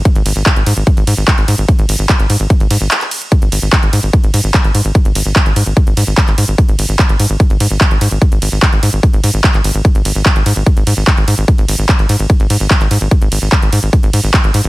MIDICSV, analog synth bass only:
0, 0, Header, 1, 2, 480
1, 0, Start_track
1, 0, Tempo, 408163
1, 62, Time_signature, 4, 2, 24, 8
1, 17271, End_track
2, 0, Start_track
2, 0, Title_t, "Analog synth bass"
2, 0, Program_c, 0, 38
2, 181, Note_on_c, 0, 32, 91
2, 262, Note_off_c, 0, 32, 0
2, 301, Note_on_c, 0, 32, 100
2, 382, Note_off_c, 0, 32, 0
2, 421, Note_on_c, 0, 32, 90
2, 503, Note_off_c, 0, 32, 0
2, 662, Note_on_c, 0, 32, 84
2, 743, Note_off_c, 0, 32, 0
2, 781, Note_on_c, 0, 44, 103
2, 862, Note_off_c, 0, 44, 0
2, 901, Note_on_c, 0, 32, 91
2, 982, Note_off_c, 0, 32, 0
2, 1141, Note_on_c, 0, 32, 91
2, 1222, Note_off_c, 0, 32, 0
2, 1261, Note_on_c, 0, 44, 104
2, 1342, Note_off_c, 0, 44, 0
2, 1381, Note_on_c, 0, 32, 92
2, 1462, Note_off_c, 0, 32, 0
2, 1621, Note_on_c, 0, 32, 92
2, 1702, Note_off_c, 0, 32, 0
2, 1741, Note_on_c, 0, 44, 103
2, 1822, Note_off_c, 0, 44, 0
2, 1861, Note_on_c, 0, 32, 93
2, 1942, Note_off_c, 0, 32, 0
2, 2101, Note_on_c, 0, 32, 92
2, 2182, Note_off_c, 0, 32, 0
2, 2221, Note_on_c, 0, 32, 101
2, 2302, Note_off_c, 0, 32, 0
2, 2341, Note_on_c, 0, 32, 90
2, 2422, Note_off_c, 0, 32, 0
2, 2581, Note_on_c, 0, 32, 88
2, 2662, Note_off_c, 0, 32, 0
2, 2701, Note_on_c, 0, 44, 101
2, 2782, Note_off_c, 0, 44, 0
2, 2822, Note_on_c, 0, 32, 92
2, 2902, Note_off_c, 0, 32, 0
2, 3061, Note_on_c, 0, 32, 91
2, 3142, Note_off_c, 0, 32, 0
2, 3181, Note_on_c, 0, 44, 98
2, 3262, Note_off_c, 0, 44, 0
2, 3301, Note_on_c, 0, 32, 92
2, 3382, Note_off_c, 0, 32, 0
2, 4021, Note_on_c, 0, 32, 88
2, 4102, Note_off_c, 0, 32, 0
2, 4141, Note_on_c, 0, 32, 103
2, 4222, Note_off_c, 0, 32, 0
2, 4261, Note_on_c, 0, 32, 97
2, 4342, Note_off_c, 0, 32, 0
2, 4501, Note_on_c, 0, 32, 86
2, 4582, Note_off_c, 0, 32, 0
2, 4621, Note_on_c, 0, 44, 105
2, 4702, Note_off_c, 0, 44, 0
2, 4741, Note_on_c, 0, 32, 94
2, 4822, Note_off_c, 0, 32, 0
2, 4981, Note_on_c, 0, 32, 88
2, 5062, Note_off_c, 0, 32, 0
2, 5101, Note_on_c, 0, 44, 103
2, 5182, Note_off_c, 0, 44, 0
2, 5221, Note_on_c, 0, 32, 91
2, 5302, Note_off_c, 0, 32, 0
2, 5461, Note_on_c, 0, 32, 92
2, 5542, Note_off_c, 0, 32, 0
2, 5581, Note_on_c, 0, 44, 99
2, 5662, Note_off_c, 0, 44, 0
2, 5701, Note_on_c, 0, 32, 94
2, 5782, Note_off_c, 0, 32, 0
2, 5941, Note_on_c, 0, 32, 92
2, 6022, Note_off_c, 0, 32, 0
2, 6061, Note_on_c, 0, 32, 105
2, 6142, Note_off_c, 0, 32, 0
2, 6181, Note_on_c, 0, 32, 90
2, 6262, Note_off_c, 0, 32, 0
2, 6421, Note_on_c, 0, 32, 88
2, 6502, Note_off_c, 0, 32, 0
2, 6541, Note_on_c, 0, 44, 107
2, 6622, Note_off_c, 0, 44, 0
2, 6661, Note_on_c, 0, 32, 86
2, 6742, Note_off_c, 0, 32, 0
2, 6901, Note_on_c, 0, 32, 96
2, 6982, Note_off_c, 0, 32, 0
2, 7021, Note_on_c, 0, 44, 105
2, 7102, Note_off_c, 0, 44, 0
2, 7142, Note_on_c, 0, 32, 97
2, 7223, Note_off_c, 0, 32, 0
2, 7382, Note_on_c, 0, 32, 93
2, 7463, Note_off_c, 0, 32, 0
2, 7502, Note_on_c, 0, 44, 102
2, 7583, Note_off_c, 0, 44, 0
2, 7622, Note_on_c, 0, 32, 93
2, 7703, Note_off_c, 0, 32, 0
2, 7862, Note_on_c, 0, 32, 87
2, 7943, Note_off_c, 0, 32, 0
2, 7982, Note_on_c, 0, 32, 102
2, 8063, Note_off_c, 0, 32, 0
2, 8102, Note_on_c, 0, 32, 94
2, 8182, Note_off_c, 0, 32, 0
2, 8342, Note_on_c, 0, 32, 89
2, 8423, Note_off_c, 0, 32, 0
2, 8462, Note_on_c, 0, 44, 100
2, 8543, Note_off_c, 0, 44, 0
2, 8582, Note_on_c, 0, 32, 94
2, 8663, Note_off_c, 0, 32, 0
2, 8822, Note_on_c, 0, 32, 94
2, 8903, Note_off_c, 0, 32, 0
2, 8942, Note_on_c, 0, 44, 101
2, 9023, Note_off_c, 0, 44, 0
2, 9062, Note_on_c, 0, 32, 90
2, 9143, Note_off_c, 0, 32, 0
2, 9302, Note_on_c, 0, 32, 94
2, 9383, Note_off_c, 0, 32, 0
2, 9422, Note_on_c, 0, 44, 101
2, 9503, Note_off_c, 0, 44, 0
2, 9542, Note_on_c, 0, 32, 96
2, 9623, Note_off_c, 0, 32, 0
2, 9782, Note_on_c, 0, 32, 84
2, 9863, Note_off_c, 0, 32, 0
2, 9902, Note_on_c, 0, 32, 106
2, 9983, Note_off_c, 0, 32, 0
2, 10022, Note_on_c, 0, 32, 95
2, 10103, Note_off_c, 0, 32, 0
2, 10262, Note_on_c, 0, 32, 86
2, 10343, Note_off_c, 0, 32, 0
2, 10382, Note_on_c, 0, 44, 101
2, 10463, Note_off_c, 0, 44, 0
2, 10502, Note_on_c, 0, 32, 87
2, 10583, Note_off_c, 0, 32, 0
2, 10742, Note_on_c, 0, 32, 89
2, 10823, Note_off_c, 0, 32, 0
2, 10862, Note_on_c, 0, 44, 99
2, 10943, Note_off_c, 0, 44, 0
2, 10982, Note_on_c, 0, 32, 92
2, 11063, Note_off_c, 0, 32, 0
2, 11222, Note_on_c, 0, 32, 89
2, 11303, Note_off_c, 0, 32, 0
2, 11342, Note_on_c, 0, 32, 101
2, 11422, Note_off_c, 0, 32, 0
2, 11462, Note_on_c, 0, 32, 93
2, 11543, Note_off_c, 0, 32, 0
2, 11701, Note_on_c, 0, 32, 92
2, 11782, Note_off_c, 0, 32, 0
2, 11821, Note_on_c, 0, 32, 100
2, 11902, Note_off_c, 0, 32, 0
2, 11941, Note_on_c, 0, 32, 91
2, 12022, Note_off_c, 0, 32, 0
2, 12182, Note_on_c, 0, 32, 90
2, 12263, Note_off_c, 0, 32, 0
2, 12301, Note_on_c, 0, 44, 102
2, 12382, Note_off_c, 0, 44, 0
2, 12422, Note_on_c, 0, 32, 92
2, 12503, Note_off_c, 0, 32, 0
2, 12662, Note_on_c, 0, 32, 89
2, 12743, Note_off_c, 0, 32, 0
2, 12781, Note_on_c, 0, 44, 98
2, 12862, Note_off_c, 0, 44, 0
2, 12901, Note_on_c, 0, 32, 93
2, 12982, Note_off_c, 0, 32, 0
2, 13141, Note_on_c, 0, 32, 95
2, 13222, Note_off_c, 0, 32, 0
2, 13261, Note_on_c, 0, 44, 103
2, 13342, Note_off_c, 0, 44, 0
2, 13381, Note_on_c, 0, 32, 99
2, 13462, Note_off_c, 0, 32, 0
2, 13621, Note_on_c, 0, 32, 86
2, 13703, Note_off_c, 0, 32, 0
2, 13741, Note_on_c, 0, 32, 101
2, 13822, Note_off_c, 0, 32, 0
2, 13861, Note_on_c, 0, 32, 90
2, 13942, Note_off_c, 0, 32, 0
2, 14101, Note_on_c, 0, 32, 84
2, 14182, Note_off_c, 0, 32, 0
2, 14221, Note_on_c, 0, 44, 105
2, 14303, Note_off_c, 0, 44, 0
2, 14341, Note_on_c, 0, 32, 88
2, 14422, Note_off_c, 0, 32, 0
2, 14582, Note_on_c, 0, 32, 94
2, 14662, Note_off_c, 0, 32, 0
2, 14701, Note_on_c, 0, 44, 98
2, 14782, Note_off_c, 0, 44, 0
2, 14821, Note_on_c, 0, 32, 93
2, 14902, Note_off_c, 0, 32, 0
2, 15061, Note_on_c, 0, 32, 89
2, 15142, Note_off_c, 0, 32, 0
2, 15181, Note_on_c, 0, 44, 96
2, 15262, Note_off_c, 0, 44, 0
2, 15301, Note_on_c, 0, 32, 95
2, 15382, Note_off_c, 0, 32, 0
2, 15541, Note_on_c, 0, 32, 89
2, 15622, Note_off_c, 0, 32, 0
2, 15662, Note_on_c, 0, 32, 102
2, 15743, Note_off_c, 0, 32, 0
2, 15782, Note_on_c, 0, 32, 88
2, 15863, Note_off_c, 0, 32, 0
2, 16022, Note_on_c, 0, 32, 88
2, 16103, Note_off_c, 0, 32, 0
2, 16141, Note_on_c, 0, 44, 105
2, 16222, Note_off_c, 0, 44, 0
2, 16262, Note_on_c, 0, 32, 88
2, 16343, Note_off_c, 0, 32, 0
2, 16502, Note_on_c, 0, 32, 92
2, 16583, Note_off_c, 0, 32, 0
2, 16622, Note_on_c, 0, 44, 97
2, 16703, Note_off_c, 0, 44, 0
2, 16742, Note_on_c, 0, 32, 93
2, 16823, Note_off_c, 0, 32, 0
2, 16982, Note_on_c, 0, 32, 92
2, 17063, Note_off_c, 0, 32, 0
2, 17102, Note_on_c, 0, 44, 100
2, 17183, Note_off_c, 0, 44, 0
2, 17222, Note_on_c, 0, 32, 97
2, 17271, Note_off_c, 0, 32, 0
2, 17271, End_track
0, 0, End_of_file